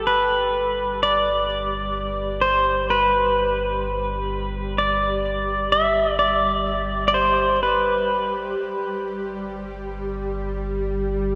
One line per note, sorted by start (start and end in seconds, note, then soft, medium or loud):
0.00 8.56 G1 medium
0.00 11.35 G3 medium
0.00 11.35 G4 medium
0.00 0.10 A4 medium
0.07 1.02 B4 medium
1.03 2.49 D5 medium
2.41 2.90 C5 medium
2.90 4.86 B4 medium
4.78 5.72 D5 medium
5.72 6.19 E5 loud
6.19 7.07 D5 medium
7.08 7.16 D5 medium
7.14 7.62 C5 medium
7.63 8.32 B4 medium
8.61 11.35 G1 medium